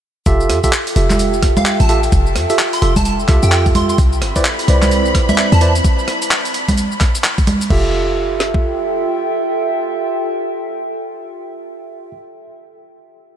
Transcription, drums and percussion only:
0.26 kick, closed hi-hat, shaker
0.41 shaker
0.50 cross-stick, closed hi-hat
0.64 kick, closed hi-hat, shaker
0.73 clap, shaker
0.87 closed hi-hat, shaker
0.96 closed hi-hat
1.10 clap, closed hi-hat, high conga, shaker
1.19 closed hi-hat, shaker
1.34 shaker
1.43 kick, cross-stick, closed hi-hat
1.57 closed hi-hat, high conga, shaker
1.66 clap, shaker
1.80 closed hi-hat, shaker
1.89 closed hi-hat
2.03 closed hi-hat, shaker
2.12 kick, closed hi-hat, shaker
2.27 shaker
2.36 cross-stick, closed hi-hat
2.50 closed hi-hat, shaker
2.59 clap, shaker
2.73 closed hi-hat, shaker
2.82 closed hi-hat
2.96 kick, closed hi-hat, high conga, shaker
3.05 closed hi-hat, shaker
3.20 shaker
3.29 kick, cross-stick, clap, closed hi-hat
3.43 closed hi-hat, shaker
3.52 clap, shaker
3.66 kick, closed hi-hat, shaker
3.75 closed hi-hat, high conga
3.89 closed hi-hat, shaker
3.98 kick, closed hi-hat, shaker
4.13 shaker
4.22 cross-stick, closed hi-hat
4.36 kick, closed hi-hat, shaker
4.45 clap, shaker
4.59 closed hi-hat, shaker
4.68 closed hi-hat
4.82 clap, closed hi-hat, high conga, shaker
4.91 closed hi-hat, shaker
5.06 shaker
5.15 kick, cross-stick, closed hi-hat
5.29 closed hi-hat, high conga, shaker
5.38 clap, shaker
5.52 closed hi-hat, shaker
5.61 closed hi-hat
5.75 closed hi-hat, shaker
5.85 kick, closed hi-hat, shaker
5.99 shaker
6.08 cross-stick, closed hi-hat
6.22 closed hi-hat, shaker
6.31 clap, shaker
6.45 closed hi-hat, shaker
6.54 closed hi-hat
6.68 kick, closed hi-hat, high conga, shaker
6.78 closed hi-hat, shaker
6.92 shaker
7.01 kick, cross-stick, clap, closed hi-hat
7.15 closed hi-hat, shaker
7.24 clap, shaker
7.38 kick, closed hi-hat, shaker
7.47 closed hi-hat, high conga
7.61 closed hi-hat, shaker
7.70 kick, crash
8.40 snare
8.54 kick

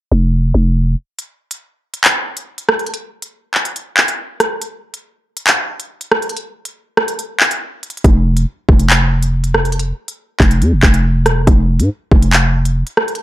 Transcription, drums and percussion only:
1.19 closed hi-hat
1.51 closed hi-hat
1.94 closed hi-hat
2.04 clap, closed hi-hat
2.37 closed hi-hat
2.58 closed hi-hat
2.69 cross-stick
2.79 closed hi-hat
2.86 closed hi-hat
2.94 closed hi-hat
3.22 closed hi-hat
3.54 clap
3.65 closed hi-hat
3.76 closed hi-hat
3.97 clap
4.08 closed hi-hat
4.40 cross-stick, closed hi-hat
4.62 closed hi-hat
4.94 closed hi-hat
5.37 closed hi-hat
5.47 clap, closed hi-hat
5.80 closed hi-hat
6.01 closed hi-hat
6.12 cross-stick
6.22 closed hi-hat
6.29 closed hi-hat
6.37 closed hi-hat
6.65 closed hi-hat
6.97 cross-stick
7.08 closed hi-hat
7.19 closed hi-hat
7.40 clap
7.51 closed hi-hat
7.83 closed hi-hat
7.90 closed hi-hat
7.97 closed hi-hat
8.04 kick, closed hi-hat
8.37 closed hi-hat
8.69 kick
8.80 closed hi-hat
8.90 clap, closed hi-hat
9.23 closed hi-hat
9.44 closed hi-hat
9.54 cross-stick
9.65 closed hi-hat
9.72 closed hi-hat
9.79 closed hi-hat
10.08 closed hi-hat
10.40 kick, clap
10.51 closed hi-hat
10.62 closed hi-hat
10.83 kick, clap
10.94 closed hi-hat
11.26 cross-stick, closed hi-hat
11.47 kick, closed hi-hat
11.80 closed hi-hat
12.11 kick
12.22 closed hi-hat
12.33 clap, closed hi-hat
12.65 closed hi-hat
12.87 closed hi-hat
12.97 cross-stick
13.08 closed hi-hat
13.15 closed hi-hat

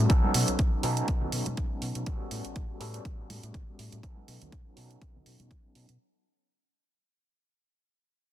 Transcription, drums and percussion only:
0.10 kick, closed hi-hat
0.24 high conga
0.34 open hi-hat, shaker
0.48 closed hi-hat, shaker
0.59 kick, closed hi-hat
0.83 open hi-hat
0.97 closed hi-hat
1.08 kick, closed hi-hat
1.21 low conga
1.32 open hi-hat, shaker
1.46 closed hi-hat, high conga, shaker
1.57 kick, closed hi-hat, shaker
1.82 open hi-hat
1.95 closed hi-hat
2.06 kick, closed hi-hat
2.31 open hi-hat
2.45 closed hi-hat
2.56 kick, closed hi-hat
2.81 open hi-hat
2.94 closed hi-hat
3.05 kick, closed hi-hat
3.30 open hi-hat, high conga, shaker
3.43 closed hi-hat, shaker
3.54 kick, closed hi-hat
3.79 open hi-hat
3.92 closed hi-hat
4.03 kick, closed hi-hat
4.17 high conga, shaker
4.28 open hi-hat, shaker
4.40 closed hi-hat, low conga, shaker
4.52 kick, closed hi-hat, shaker
4.77 open hi-hat
4.91 closed hi-hat
5.02 kick, closed hi-hat
5.14 low conga, shaker
5.26 open hi-hat, shaker
5.40 closed hi-hat, high conga, shaker
5.51 kick, closed hi-hat
5.75 open hi-hat, shaker
5.89 closed hi-hat

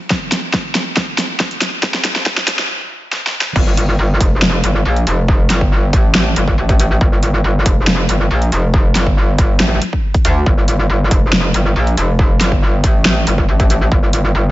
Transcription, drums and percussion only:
0.10 kick, snare
0.32 snare, closed hi-hat
0.54 kick, snare
0.75 snare, closed hi-hat
0.97 kick, snare
1.18 snare, closed hi-hat
1.40 kick, snare
1.51 closed hi-hat
1.61 snare, closed hi-hat
1.83 kick, snare
1.94 snare
2.05 snare, closed hi-hat
2.16 snare
2.26 kick, snare
2.37 snare
2.48 snare, closed hi-hat
2.59 snare
3.13 snare
3.27 snare
3.41 snare
3.56 kick, crash
3.77 closed hi-hat
4.21 kick, closed hi-hat
4.42 snare
4.64 closed hi-hat
4.96 closed hi-hat
5.07 closed hi-hat
5.28 kick
5.50 snare, closed hi-hat
5.61 kick
5.93 kick, closed hi-hat
6.15 snare
6.36 closed hi-hat
6.48 kick
6.69 kick, closed hi-hat
6.80 closed hi-hat
7.01 kick
7.23 closed hi-hat
7.66 kick, closed hi-hat
7.87 snare
8.09 closed hi-hat
8.42 closed hi-hat
8.52 closed hi-hat
8.74 kick
8.95 snare, closed hi-hat
9.07 kick
9.38 kick, closed hi-hat
9.60 snare
9.82 closed hi-hat
9.93 kick
10.14 kick, closed hi-hat
10.25 closed hi-hat
10.46 kick
10.68 closed hi-hat
11.11 kick, closed hi-hat
11.33 snare
11.54 closed hi-hat
11.87 closed hi-hat
11.97 closed hi-hat
12.19 kick
12.41 snare, closed hi-hat
12.52 kick
12.84 kick, closed hi-hat
13.05 snare
13.27 closed hi-hat
13.38 kick
13.60 kick, closed hi-hat
13.70 closed hi-hat
13.92 kick
14.13 closed hi-hat

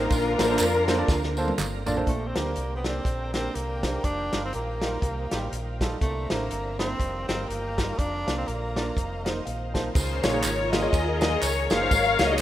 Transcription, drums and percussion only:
0.10 kick, ride bell, tambourine
0.39 snare, ride bell, tambourine
0.59 clap, ride bell, tambourine
0.88 snare, ride bell, tambourine
1.08 kick, snare, tambourine
1.23 snare
1.37 tambourine
1.48 high tom
1.58 clap, mid tom, tambourine
1.86 floor tom, tambourine
1.97 floor tom
2.07 kick, closed hi-hat
2.36 snare, closed hi-hat
2.56 closed hi-hat
2.84 snare, closed hi-hat
3.05 kick, closed hi-hat
3.34 snare, closed hi-hat
3.55 closed hi-hat
3.83 kick, snare, closed hi-hat
4.04 kick, closed hi-hat
4.33 snare, closed hi-hat
4.53 closed hi-hat
4.82 snare, closed hi-hat
5.02 kick, closed hi-hat
5.31 snare, closed hi-hat
5.53 closed hi-hat
5.81 kick, snare, closed hi-hat
6.01 kick, closed hi-hat
6.30 snare, closed hi-hat
6.51 closed hi-hat
6.79 snare, closed hi-hat
7.00 kick, closed hi-hat
7.29 snare, closed hi-hat
7.50 closed hi-hat
7.78 kick, snare, closed hi-hat
7.99 kick, closed hi-hat
8.28 snare, closed hi-hat
8.48 closed hi-hat
8.76 snare, closed hi-hat
8.97 kick, closed hi-hat
9.26 snare, closed hi-hat
9.47 closed hi-hat
9.75 kick, snare, closed hi-hat
9.95 kick, crash, tambourine
10.23 snare, ride bell, tambourine
10.44 clap, ride bell, tambourine
10.73 snare, ride bell, tambourine
10.93 kick, ride bell, tambourine
11.21 snare, ride bell, tambourine
11.43 clap, ride bell, tambourine
11.70 snare, ride bell, tambourine
11.91 kick, ride bell, tambourine
12.19 snare, ride bell, tambourine

